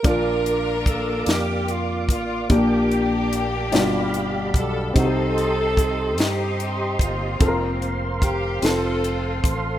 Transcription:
0.03 1.24 A#1 medium
0.03 1.23 A#2 soft
0.03 2.45 A#3 soft
0.03 3.69 A#3 medium
0.03 2.46 D4 soft
0.03 1.24 D4 medium
0.03 1.24 F4 medium
0.03 2.47 F4 medium
0.03 1.24 A#4 medium
0.03 2.48 D5 soft
0.03 2.48 F5 soft
0.03 3.69 D6 medium
0.03 kick medium
0.03 closed hi-hat medium
0.07 0.90 A#4 medium
0.46 closed hi-hat soft
0.86 1.31 A4 medium
0.86 kick medium
0.86 closed hi-hat medium
1.26 2.08 F2 medium
1.26 1.72 G4 medium
1.26 1.70 G4 medium
1.26 snare medium
1.26 closed hi-hat medium
1.68 2.10 F4 medium
1.68 2.11 F4 medium
1.68 closed hi-hat soft
2.08 2.46 A1 medium
2.08 2.48 F4 medium
2.08 2.54 F4 medium
2.08 kick medium
2.08 closed hi-hat medium
2.49 3.73 A#1 medium
2.49 3.69 A#2 medium
2.49 3.72 A#3 medium
2.49 4.51 A#3 medium
2.49 3.71 D4 soft
2.49 4.52 D4 medium
2.49 3.71 G4 medium
2.49 4.52 G4 medium
2.49 4.29 G4 medium
2.49 4.93 D5 soft
2.49 3.72 G5 soft
2.49 kick medium
2.49 closed hi-hat medium
2.91 closed hi-hat soft
3.33 closed hi-hat medium
3.72 4.51 G1 medium
3.72 4.91 G2 medium
3.72 4.95 B2 medium
3.72 4.95 D4 soft
3.72 4.95 F4 medium
3.72 4.95 G4 medium
3.72 7.37 G4 soft
3.72 4.96 D5 medium
3.72 4.94 F5 soft
3.72 4.94 B5 medium
3.72 snare loud
3.72 closed hi-hat medium
4.14 closed hi-hat soft
4.54 4.92 B1 medium
4.54 4.96 A4 medium
4.54 4.94 A4 medium
4.54 kick medium
4.54 closed hi-hat medium
4.93 6.18 C2 medium
4.93 6.14 C3 medium
4.93 7.35 C4 medium
4.93 6.15 C4 medium
4.93 7.36 D#4 soft
4.93 6.15 D#4 medium
4.93 6.15 A4 medium
4.93 9.79 C5 medium
4.93 7.38 D#5 soft
4.93 9.79 C6 medium
4.93 kick medium
4.93 closed hi-hat medium
4.97 5.03 F#4 soft
4.97 6.23 A4 loud
5.04 7.40 G4 medium
5.38 closed hi-hat soft
5.77 kick medium
5.77 closed hi-hat medium
6.18 6.96 G2 medium
6.18 7.00 C4 soft
6.18 7.38 D#4 medium
6.18 7.01 G4 medium
6.18 snare medium
6.18 closed hi-hat medium
6.60 closed hi-hat soft
6.99 7.37 G1 medium
6.99 8.19 A#3 soft
6.99 8.19 C4 soft
6.99 7.82 F4 medium
6.99 7.79 F4 medium
6.99 kick medium
6.99 closed hi-hat medium
7.40 8.59 F1 medium
7.40 8.60 C4 soft
7.40 8.61 F4 medium
7.40 7.47 A4 soft
7.40 8.61 A#4 medium
7.40 8.61 F5 medium
7.40 kick medium
7.40 closed hi-hat medium
7.48 8.67 A#4 medium
7.82 closed hi-hat soft
8.22 8.60 G4 medium
8.22 8.66 G4 medium
8.22 kick medium
8.22 closed hi-hat medium
8.62 9.40 F1 medium
8.62 9.79 C4 medium
8.62 9.79 F4 soft
8.62 9.79 F4 medium
8.62 9.79 A4 medium
8.62 9.55 A4 medium
8.62 9.79 A4 medium
8.62 9.55 A4 medium
8.62 9.79 F5 soft
8.62 snare medium
8.62 closed hi-hat medium
9.04 closed hi-hat soft
9.44 9.79 A1 medium
9.44 kick medium
9.44 closed hi-hat medium

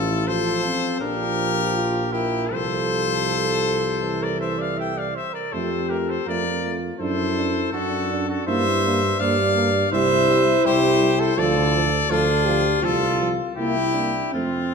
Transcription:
0.00 0.73 A1 medium
0.00 0.27 E4 medium
0.00 0.23 F4 medium
0.00 0.29 A4 loud
0.27 0.96 F3 loud
0.27 0.63 F4 medium
0.27 0.99 A4 loud
0.27 1.00 C5 loud
0.64 1.03 C4 medium
1.00 2.48 A#1 medium
1.00 2.48 F3 medium
1.00 1.48 D4 medium
1.00 2.14 G4 loud
1.00 2.10 A#4 loud
1.74 2.10 F4 medium
2.12 2.50 E4 medium
2.12 2.54 G4 loud
2.12 2.54 A#4 medium
2.51 5.17 C2 medium
2.51 4.04 F3 medium
2.51 4.23 A4 loud
2.51 5.16 A4 medium
2.51 4.25 C5 loud
4.02 5.21 E3 medium
4.22 4.40 A#4 medium
4.22 4.40 D5 loud
4.40 4.60 C5 medium
4.40 4.63 E5 loud
4.59 4.79 D5 medium
4.59 4.79 F5 loud
4.78 4.99 E5 medium
4.78 5.00 G5 loud
4.97 5.17 D5 medium
4.97 5.15 F5 medium
5.16 5.35 C5 medium
5.16 5.34 E5 loud
5.34 5.53 A#4 medium
5.34 5.54 D5 medium
5.52 6.19 F2 medium
5.52 5.69 A3 medium
5.52 6.29 G4 medium
5.52 5.88 A4 medium
5.52 5.91 C5 loud
5.89 6.07 A3 medium
5.89 5.98 G4 medium
5.89 6.11 A#4 medium
6.07 6.28 A4 medium
6.07 6.28 C5 medium
6.26 6.91 F2 medium
6.26 6.44 A3 medium
6.26 6.99 F4 medium
6.26 6.74 A#4 medium
6.26 6.74 D5 loud
6.64 6.80 A3 medium
6.99 7.65 F#2 medium
6.99 7.16 D4 medium
6.99 7.72 E4 medium
6.99 7.69 A4 medium
6.99 7.69 C5 loud
7.37 7.53 D4 medium
7.72 8.39 F#2 medium
7.72 7.89 D4 medium
7.72 8.49 D4 medium
7.72 8.28 F#4 loud
7.72 8.28 A4 loud
8.11 8.27 D4 medium
8.28 8.46 F#4 medium
8.28 8.46 A4 medium
8.47 9.12 G2 loud
8.47 8.64 A#3 medium
8.47 8.84 E4 medium
8.47 9.19 C5 loud
8.47 9.21 E5 loud
8.85 9.01 A#3 medium
8.85 9.94 D4 medium
9.19 9.84 G2 medium
9.19 9.37 A#3 medium
9.19 9.91 D5 loud
9.19 9.92 F5 loud
9.55 9.71 A#3 medium
9.92 10.57 C2 loud
9.92 10.09 G3 medium
9.92 11.37 E4 loud
9.92 10.67 C5 loud
9.92 10.64 E5 loud
10.28 10.44 G3 medium
10.65 11.30 C2 loud
10.65 10.81 G3 medium
10.65 11.21 G4 loud
10.65 11.19 C5 loud
11.00 11.16 G3 medium
11.19 11.36 A4 loud
11.19 11.40 C5 loud
11.36 12.02 D2 loud
11.36 11.53 F3 loud
11.36 11.84 F4 loud
11.36 12.08 A4 loud
11.36 12.12 D5 loud
11.75 11.91 F3 medium
12.10 12.75 D2 loud
12.10 12.27 F3 medium
12.10 12.81 D4 loud
12.10 12.85 F4 loud
12.10 12.46 A4 loud
12.45 12.63 F3 medium
12.45 12.82 G4 loud
12.82 13.40 C2 loud
12.82 12.99 F3 medium
12.82 13.56 F4 loud
12.82 13.30 F4 loud
12.82 13.31 A4 loud
13.20 13.36 F3 medium
13.56 14.25 C2 medium
13.56 13.75 A#3 medium
13.56 14.30 E4 loud
13.56 13.93 E4 medium
13.56 14.30 G4 loud
13.94 14.13 A#3 medium
13.94 14.34 D4 medium
14.33 14.74 F2 medium
14.33 14.51 A3 medium
14.33 14.74 C4 medium
14.33 14.74 F4 loud

